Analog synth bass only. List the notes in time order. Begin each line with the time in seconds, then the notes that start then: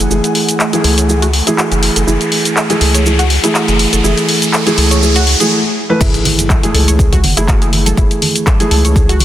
0.10 F#1
0.84 C#2
1.71 F#1
1.96 F#1
2.07 F#1
2.81 C#2
3.68 F#1
3.93 F#1
4.04 F#1
4.78 C#2
6.01 F#1
6.75 C#2
7.24 F#1
7.37 F#1
7.97 F#1
8.71 C#2
9.20 F#1